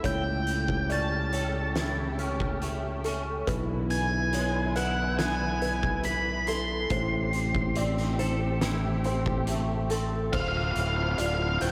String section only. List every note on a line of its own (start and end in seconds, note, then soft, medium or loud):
0.04 3.45 C#3 medium
0.04 3.45 A3 medium
0.04 3.44 G4 medium
3.46 6.87 D3 medium
3.46 6.87 B3 medium
3.46 6.87 E4 medium
6.90 10.29 C3 medium
6.90 10.29 A3 medium
6.90 10.29 G4 medium
10.32 11.72 D3 medium
10.32 11.72 C4 medium
10.32 11.72 F4 medium